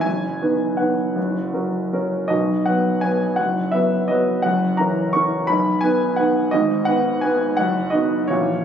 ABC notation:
X:1
M:3/4
L:1/8
Q:1/4=167
K:B
V:1 name="Grand piano"
g4 f2- | f4 z2 | d2 f2 g2 | f2 e2 d2 |
f2 a2 c'2 | b2 g2 f2 | d2 f2 g2 | f2 d2 c2 |]
V:2 name="Grand piano" clef=bass
[F,,,F,,]2 [D,B,B]2 [D,B,B]2 | [F,,,F,,]2 [F,CA]2 [F,CA]2 | [B,,,B,,]2 [F,B,B]2 [F,B,B]2 | [F,,,F,,]2 [F,B,B]2 [F,B,B]2 |
[F,,,F,,]2 [E,CA]2 [E,CA]2 | [B,,,B,,]2 [D,B,B]2 [D,B,B]2 | [G,,,G,,]2 [D,B,B]2 [D,B,B]2 | [F,,,F,,]2 [D,B,F]2 [A,,,A,,E,CF]2 |]